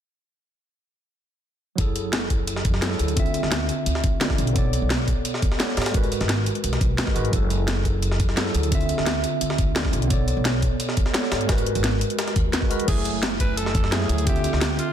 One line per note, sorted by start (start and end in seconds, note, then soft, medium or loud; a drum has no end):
1.76 2.66 F#1 medium
1.76 2.79 F#3 medium
1.76 2.80 E4 medium
1.76 2.81 G#4 medium
1.76 kick loud
1.76 closed hi-hat medium
1.81 2.82 A4 medium
1.96 closed hi-hat medium
2.13 snare loud
2.13 closed hi-hat medium
2.30 kick medium
2.30 closed hi-hat medium
2.47 closed hi-hat medium
2.56 snare soft
2.65 2.98 F#2 medium
2.65 kick loud
2.65 closed hi-hat medium
2.74 snare soft
2.81 3.14 F#3 medium
2.81 3.15 E4 medium
2.81 3.15 G#4 medium
2.81 3.16 A4 medium
2.81 snare loud
2.81 closed hi-hat medium
2.91 snare soft
2.99 3.42 D2 medium
2.99 closed hi-hat medium
3.08 closed hi-hat soft
3.14 4.18 D3 medium
3.14 4.18 C4 medium
3.14 4.19 F4 medium
3.14 kick loud
3.14 closed hi-hat medium
3.19 4.20 E5 loud
3.26 closed hi-hat soft
3.34 closed hi-hat medium
3.43 3.68 D2 medium
3.43 snare soft
3.52 snare loud
3.52 closed hi-hat medium
3.69 closed hi-hat medium
3.86 4.37 D2 medium
3.86 closed hi-hat medium
3.95 snare soft
4.04 kick loud
4.04 closed hi-hat medium
4.19 4.26 D3 medium
4.19 4.26 C4 medium
4.19 4.27 F4 medium
4.19 4.27 D5 medium
4.19 snare loud
4.19 closed hi-hat medium
4.30 kick medium
4.30 snare medium
4.38 4.81 B1 medium
4.38 closed hi-hat medium
4.47 closed hi-hat soft
4.53 5.56 B3 medium
4.53 5.57 A4 medium
4.53 5.58 C#5 medium
4.53 kick loud
4.53 closed hi-hat medium
4.58 5.59 D5 medium
4.73 closed hi-hat medium
4.82 5.06 B1 medium
4.90 snare loud
4.90 closed hi-hat medium
5.08 kick medium
5.08 closed hi-hat medium
5.25 closed hi-hat medium
5.34 snare soft
5.42 kick loud
5.42 closed hi-hat medium
5.52 snare soft
5.58 5.92 B3 medium
5.58 5.92 A4 medium
5.58 5.92 C#5 medium
5.58 5.93 D5 medium
5.58 snare loud
5.58 closed hi-hat medium
5.69 snare soft
5.77 6.22 G#2 medium
5.77 snare medium
5.77 closed hi-hat medium
5.82 snare medium
5.82 closed hi-hat medium
5.86 snare loud
5.86 closed hi-hat soft
5.86 closed hi-hat medium
5.91 6.95 G#3 medium
5.91 6.96 F#4 medium
5.91 6.97 A#4 medium
5.91 kick loud
5.91 closed hi-hat medium
5.97 6.98 B4 loud
6.04 closed hi-hat soft
6.12 closed hi-hat medium
6.21 6.45 G#1 medium
6.21 snare soft
6.21 closed hi-hat soft
6.29 snare loud
6.29 closed hi-hat medium
6.46 closed hi-hat medium
6.55 closed hi-hat soft
6.64 6.80 B1 medium
6.64 closed hi-hat medium
6.73 snare soft
6.73 closed hi-hat soft
6.81 6.98 B1 medium
6.81 kick loud
6.81 closed hi-hat medium
6.98 7.14 D#2 medium
6.98 snare loud
6.98 closed hi-hat medium
7.06 7.13 G#3 medium
7.06 7.13 F#4 medium
7.06 7.14 A#4 medium
7.06 7.14 B4 medium
7.06 kick medium
7.06 snare medium
7.14 7.32 G#1 medium
7.14 7.30 G#3 medium
7.14 7.31 F#4 medium
7.14 7.31 A#4 medium
7.14 7.32 B4 medium
7.14 closed hi-hat medium
7.25 closed hi-hat soft
7.30 8.21 F#1 medium
7.30 8.34 F#3 medium
7.30 8.35 E4 medium
7.30 8.36 G#4 medium
7.30 kick loud
7.30 closed hi-hat medium
7.36 8.36 A4 medium
7.50 closed hi-hat medium
7.68 snare loud
7.68 closed hi-hat medium
7.85 kick medium
7.85 closed hi-hat medium
8.02 closed hi-hat medium
8.11 snare soft
8.20 8.53 F#2 medium
8.20 kick loud
8.20 closed hi-hat medium
8.29 snare soft
8.36 8.69 F#3 medium
8.36 8.70 E4 medium
8.36 8.70 G#4 medium
8.36 8.71 A4 medium
8.36 snare loud
8.36 closed hi-hat medium
8.46 snare soft
8.54 8.97 D2 medium
8.54 closed hi-hat medium
8.63 closed hi-hat soft
8.69 9.73 D3 medium
8.69 9.73 C4 medium
8.69 9.74 F4 medium
8.69 kick loud
8.69 closed hi-hat medium
8.75 9.75 E5 loud
8.81 closed hi-hat soft
8.89 closed hi-hat medium
8.98 9.23 D2 medium
8.98 snare soft
9.06 snare loud
9.06 closed hi-hat medium
9.24 closed hi-hat medium
9.41 9.92 D2 medium
9.41 closed hi-hat medium
9.50 snare soft
9.58 kick loud
9.58 closed hi-hat medium
9.74 9.81 D3 medium
9.74 9.81 C4 medium
9.74 9.81 F4 medium
9.74 9.82 D5 medium
9.74 snare loud
9.74 closed hi-hat medium
9.85 kick medium
9.85 snare medium
9.93 10.35 B1 medium
9.93 closed hi-hat medium
10.02 closed hi-hat soft
10.08 11.11 B3 medium
10.08 11.12 A4 medium
10.08 11.13 C#5 medium
10.08 kick loud
10.08 closed hi-hat medium
10.13 11.14 D5 medium
10.28 closed hi-hat medium
10.37 10.61 B1 medium
10.45 snare loud
10.45 closed hi-hat medium
10.62 kick medium
10.62 closed hi-hat medium
10.80 closed hi-hat medium
10.89 snare soft
10.97 kick medium
10.97 closed hi-hat medium
11.06 snare soft
11.13 11.47 B3 medium
11.13 11.47 A4 medium
11.13 11.48 C#5 medium
11.13 11.48 D5 medium
11.13 snare loud
11.13 closed hi-hat medium
11.23 snare soft
11.32 11.77 G#2 medium
11.32 snare loud
11.32 closed hi-hat medium
11.41 closed hi-hat soft
11.46 12.50 G#3 medium
11.46 12.51 F#4 medium
11.46 12.52 A#4 medium
11.46 kick loud
11.46 snare medium
11.46 closed hi-hat medium
11.52 12.53 B4 loud
11.58 closed hi-hat medium
11.66 closed hi-hat medium
11.75 12.00 G#1 medium
11.75 closed hi-hat medium
11.75 closed hi-hat soft
11.84 snare loud
11.84 closed hi-hat medium
12.01 closed hi-hat medium
12.10 closed hi-hat soft
12.19 snare medium
12.19 closed hi-hat medium
12.27 snare soft
12.27 closed hi-hat soft
12.36 12.78 D#2 medium
12.36 kick medium
12.36 closed hi-hat medium
12.53 snare loud
12.53 closed hi-hat medium
12.61 12.68 G#3 medium
12.61 12.68 F#4 medium
12.61 12.69 A#4 medium
12.61 12.69 B4 medium
12.61 kick medium
12.69 12.85 G#3 medium
12.69 12.86 F#4 medium
12.69 12.86 A#4 medium
12.69 12.87 B4 loud
12.69 closed hi-hat medium
12.80 closed hi-hat soft
12.85 13.76 F#1 medium
12.85 13.89 F#3 medium
12.85 13.90 E4 medium
12.85 13.20 G#4 loud
12.85 13.90 G#5 medium
12.85 kick loud
12.85 closed hi-hat medium
12.85 crash medium
12.91 13.91 A3 medium
13.05 closed hi-hat medium
13.23 snare loud
13.23 closed hi-hat medium
13.40 13.59 B4 loud
13.40 kick medium
13.40 closed hi-hat medium
13.57 13.93 A4 loud
13.57 closed hi-hat medium
13.66 snare soft
13.75 14.08 F#2 medium
13.75 kick loud
13.75 closed hi-hat medium
13.84 snare soft
13.91 14.24 F#3 medium
13.91 14.25 A3 medium
13.91 14.24 E4 medium
13.91 14.28 G#4 loud
13.91 14.25 G#4 medium
13.91 snare loud
13.91 closed hi-hat medium
14.01 snare soft
14.09 14.52 D2 medium
14.09 closed hi-hat medium
14.18 closed hi-hat soft
14.24 14.93 D3 medium
14.24 14.93 C4 medium
14.24 14.93 F4 medium
14.24 14.78 G4 loud
14.24 kick loud
14.24 closed hi-hat medium
14.29 14.93 E5 loud
14.36 closed hi-hat soft
14.44 closed hi-hat medium
14.53 14.77 D2 medium
14.53 snare soft
14.61 snare loud
14.61 closed hi-hat medium
14.79 14.93 F4 loud
14.79 closed hi-hat medium